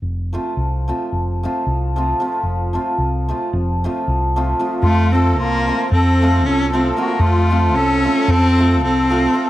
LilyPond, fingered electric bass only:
\new Staff \with { instrumentName = "Fingered electric bass" } { \clef bass \time 9/8 \key f \major \tempo 4. = 76 f,,4 c,4 f,,4 c,4. | f,,4 c,4 f,,4 c,4. | f,4 c,4 f,4 c,4. | f,4 c,4 f,4 c,4. | }